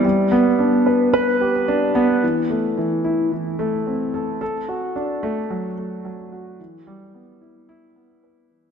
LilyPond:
\new Staff \with { instrumentName = "Grand piano" } { \time 4/4 \key g \major \tempo 4 = 110 g8 b8 d'8 b'8 b'8 g'8 d'8 b8 | e8 a8 e8 e'8 e8 a8 c'8 a'8 | a'8 fis'8 d'8 a8 fis8 a8 fis8 fis'8 | e8 g8 b8 e'8 e'8 b8 b'8 e8 | }